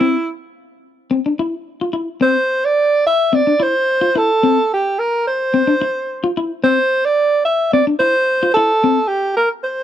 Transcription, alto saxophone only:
0.00 0.30 E4 loud
2.22 2.67 C5 loud
2.65 3.05 D5 loud
3.06 3.36 E5 loud
3.35 3.64 D5 loud
3.63 4.19 C5 loud
4.17 4.71 A4 loud
4.73 5.00 G4 medium
4.99 5.26 A#4 medium
5.27 6.32 C5 loud
6.63 7.06 C5 loud
7.05 7.44 D5 loud
7.45 7.71 E5 medium
7.73 7.85 D5 loud
7.99 8.51 C5 loud
8.54 9.09 A4 loud
9.08 9.36 G4 loud
9.36 9.49 A#4 medium
9.64 9.83 C5 loud

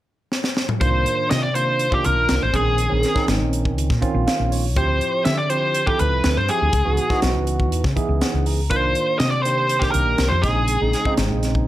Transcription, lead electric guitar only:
0.81 1.30 C5 medium
1.30 1.42 D#5 medium
1.43 1.55 D5 medium
1.55 1.94 C5 medium
1.93 2.05 G4 medium
2.06 2.43 A#4 medium
2.42 2.55 C5 medium
2.55 3.25 G#4 medium
4.77 5.23 C5 medium
5.25 5.38 E5 medium
5.38 5.50 D5 medium
5.50 5.88 C5 medium
5.86 5.99 G4 medium
6.00 6.38 B4 medium
6.37 6.49 C5 medium
6.49 7.19 G#4 medium
8.70 9.18 C5 medium
9.19 9.30 D#5 medium
9.30 9.42 D5 medium
9.43 9.82 C5 medium
9.79 9.91 G4 medium
9.92 10.31 A#4 medium
10.29 10.43 C5 medium
10.42 11.13 G#4 medium

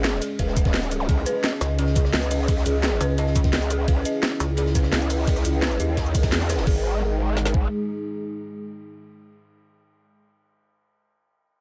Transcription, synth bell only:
0.04 0.08 G#4 medium
0.22 0.26 G#4 medium
0.39 0.46 B4 loud
0.57 0.63 D#5 medium
0.91 0.95 G#4 medium
1.09 1.13 G#4 medium
1.26 1.33 B4 loud
1.44 1.50 D#5 medium
1.79 1.83 G#4 medium
1.96 2.00 G#4 medium
2.13 2.20 B4 loud
2.31 2.38 D#5 medium
2.66 2.70 G#4 medium
2.83 2.87 G#4 medium
3.01 3.07 B4 loud
3.18 3.25 D#5 medium
3.53 3.57 G#4 medium
3.70 3.75 G#4 medium
3.88 3.95 B4 loud
4.05 4.12 D#5 medium
4.40 4.44 G#4 medium
4.58 4.62 G#4 medium
4.75 4.82 B4 loud
4.93 4.99 D#5 medium
5.27 5.31 G#4 medium
5.45 5.49 G#4 medium
5.62 5.69 B4 loud
5.80 5.87 D#5 medium
6.15 6.19 G#4 medium
6.32 6.36 G#4 medium
6.50 6.56 B4 loud
6.67 6.83 G#4 medium

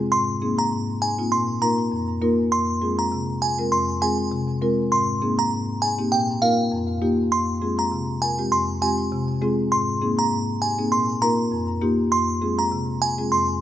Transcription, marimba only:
0.12 0.58 G#2 medium
0.42 0.55 A#3 medium
0.42 0.55 C4 medium
0.42 0.55 D#4 medium
0.42 0.55 G#4 medium
0.72 1.18 G#2 medium
1.02 1.08 D#4 medium
1.02 1.09 G#4 medium
1.18 1.29 A#3 medium
1.18 1.29 C4 medium
1.18 1.29 D#4 medium
1.18 1.29 F4 medium
1.32 1.78 A#2 medium
1.62 1.75 A#3 medium
1.62 1.75 D#4 medium
1.62 1.75 F4 medium
1.62 1.75 A#4 medium
1.92 2.38 F2 medium
2.22 2.35 A#3 medium
2.22 2.35 D#4 medium
2.22 2.35 F4 medium
2.22 2.35 A#4 loud
2.52 2.98 F2 medium
2.82 2.95 G#3 medium
2.82 2.95 C4 medium
2.82 2.95 F4 medium
2.82 2.95 G#4 medium
3.12 3.58 C3 medium
3.42 3.48 F4 medium
3.42 3.49 G#4 medium
3.59 3.69 G#3 medium
3.59 3.69 C4 medium
3.59 3.69 F4 medium
3.59 3.69 A#4 medium
3.72 4.18 F2 medium
4.02 4.15 G#3 medium
4.02 4.15 C4 medium
4.02 4.15 F4 medium
4.02 4.15 G#4 medium
4.32 4.78 C3 medium
4.62 4.75 G#3 medium
4.62 4.75 C4 medium
4.62 4.75 F4 medium
4.62 4.75 A#4 loud
4.92 5.38 G#2 medium
5.22 5.35 A#3 medium
5.22 5.35 C4 medium
5.22 5.35 D#4 medium
5.22 5.35 G#4 medium
5.52 5.98 G#2 medium
5.82 5.88 D#4 medium
5.82 5.89 G#4 medium
5.98 6.09 A#3 medium
5.98 6.09 C4 medium
5.98 6.09 D#4 medium
5.98 6.09 G4 medium
6.12 6.58 A#2 medium
6.42 6.55 A#3 medium
6.42 6.55 D#4 medium
6.42 6.55 F4 medium
6.42 6.55 A#4 medium
6.72 7.18 F2 medium
7.02 7.15 A#3 medium
7.02 7.15 D#4 medium
7.02 7.15 F4 medium
7.02 7.15 G4 loud
7.32 7.78 F2 medium
7.62 7.75 G#3 medium
7.62 7.75 C4 medium
7.62 7.75 F4 medium
7.62 7.75 G#4 medium
7.92 8.38 C3 medium
8.22 8.28 F4 medium
8.22 8.29 A#4 medium
8.38 8.49 G#3 medium
8.38 8.49 C4 medium
8.38 8.49 F4 medium
8.38 8.49 G4 medium
8.52 8.98 F2 medium
8.82 8.95 G#3 medium
8.82 8.95 C4 medium
8.82 8.95 F4 medium
8.82 8.95 G4 medium
9.12 9.58 C3 medium
9.42 9.55 G#3 loud
9.42 9.55 C4 medium
9.42 9.55 F4 medium
9.42 9.55 G#4 loud
9.72 10.18 G#2 medium
10.02 10.15 A#3 medium
10.02 10.15 C4 medium
10.02 10.15 D#4 medium
10.02 10.15 G#4 medium
10.32 10.78 G#2 medium
10.62 10.68 D#4 medium
10.62 10.69 G4 medium
10.78 10.89 A#3 medium
10.78 10.89 C4 medium
10.78 10.89 D#4 medium
10.78 10.89 G#4 medium
10.92 11.38 A#2 medium
11.22 11.35 A#3 medium
11.22 11.35 D#4 medium
11.22 11.35 F4 medium
11.22 11.35 A#4 medium
11.52 11.98 F2 medium
11.82 11.95 A#3 medium
11.82 11.95 D#4 medium
11.82 11.95 F4 medium
11.82 11.95 G4 loud
12.12 12.58 F2 medium
12.42 12.55 G#3 medium
12.42 12.55 C4 medium
12.42 12.55 F4 medium
12.42 12.55 G#4 medium
12.72 13.18 C3 medium
13.01 13.08 F4 medium
13.01 13.08 G#4 medium
13.18 13.29 G#3 medium
13.18 13.29 C4 medium
13.18 13.29 F4 medium
13.18 13.29 G#4 medium
13.32 13.61 F2 medium

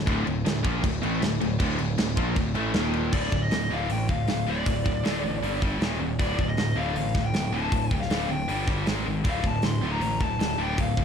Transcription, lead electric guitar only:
3.13 3.42 D5 medium
3.43 3.72 D#5 medium
3.73 3.90 F5 medium
3.91 4.08 G5 loud
4.09 4.49 F5 loud
4.49 5.59 D5 medium
6.19 6.48 D5 medium
6.49 6.78 D#5 medium
6.77 6.93 F5 medium
6.94 7.24 F5 loud
7.25 7.54 G5 medium
7.53 8.02 A5 loud
8.00 8.27 F5 medium
8.30 8.66 G5 medium
9.29 9.47 F5 loud
9.47 9.65 A5 loud
9.65 9.92 C6 loud
9.92 10.22 A#5 medium
10.22 10.61 A5 loud
10.62 10.80 G5 medium
10.81 11.05 F5 loud

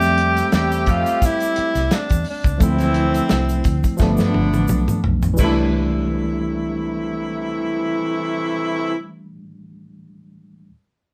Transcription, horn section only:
0.00 2.22 G3 medium
0.00 2.22 A3 medium
0.00 2.22 C4 medium
0.00 2.22 G4 medium
2.61 3.63 E3 medium
2.61 3.63 A3 medium
2.61 3.63 C4 medium
2.61 3.63 E4 medium
4.00 5.02 D3 medium
4.00 5.02 A3 medium
4.00 5.02 B3 medium
4.00 5.02 D4 medium
5.39 8.93 C3 medium
5.39 8.93 E3 medium
5.39 8.93 A3 medium
5.39 8.93 E4 medium

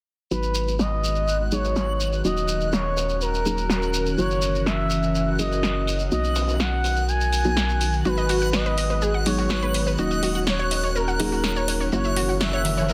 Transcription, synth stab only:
0.31 1.49 F#3 medium
0.31 1.49 G#3 medium
0.31 1.49 B3 medium
0.31 1.49 D#4 medium
0.31 1.49 F#4 medium
1.52 2.22 F#3 medium
1.52 2.22 G#3 medium
1.52 2.22 B3 medium
1.52 2.22 D#4 medium
1.52 2.22 G#4 medium
2.25 3.43 F#3 medium
2.25 3.43 A#3 medium
2.25 3.43 C#4 medium
2.25 3.43 D#4 medium
2.25 3.43 F#4 medium
3.46 4.15 F#3 medium
3.46 4.15 A#3 medium
3.46 4.15 C#4 medium
3.46 4.15 D#4 medium
3.46 4.15 G#4 medium
4.18 5.36 F#3 medium
4.18 5.36 A#3 medium
4.18 5.36 C#4 medium
4.18 5.36 E4 medium
4.18 5.36 F#4 medium
5.39 6.09 F#3 medium
5.39 6.09 A#3 medium
5.39 6.09 C#4 medium
5.39 6.09 E4 medium
5.39 6.09 G#4 medium
6.12 7.30 F#3 medium
6.12 7.30 A#3 medium
6.12 7.30 B3 medium
6.12 7.30 D#4 medium
6.12 7.30 F#4 medium
7.45 8.02 F#3 medium
7.45 8.02 A#3 medium
7.45 8.02 B3 medium
7.45 8.02 D#4 medium
7.45 8.02 F#4 medium
8.05 9.23 F#3 medium
8.05 9.23 G#3 medium
8.05 9.23 B3 medium
8.05 9.23 D#4 medium
8.05 9.23 F#4 medium
9.26 9.96 F#3 medium
9.26 9.96 G#3 medium
9.26 9.96 B3 medium
9.26 9.96 D#4 medium
9.26 9.96 G#4 medium
9.99 11.17 F#3 medium
9.99 11.17 A#3 medium
9.99 11.17 C#4 medium
9.99 11.17 D#4 medium
9.99 11.17 F#4 medium
11.20 11.89 F#3 medium
11.20 11.89 A#3 medium
11.20 11.89 C#4 medium
11.20 11.89 D#4 medium
11.20 11.89 G#4 medium
11.92 12.93 F#3 medium
11.92 12.93 A#3 medium
11.92 12.93 C#4 medium
11.92 12.93 E4 medium
11.92 12.93 F#4 medium

